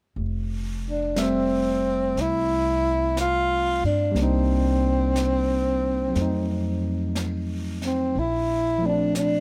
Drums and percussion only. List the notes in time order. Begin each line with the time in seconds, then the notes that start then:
0.17 brush sweep
1.16 brush sweep, snare, hi-hat pedal
2.17 brush sweep, snare
3.17 brush sweep, snare, hi-hat pedal
4.16 brush sweep, snare
5.16 brush sweep, snare, hi-hat pedal
6.15 brush sweep, snare
7.15 brush sweep, snare, hi-hat pedal
7.82 snare
8.15 brush sweep
9.15 brush sweep, snare, hi-hat pedal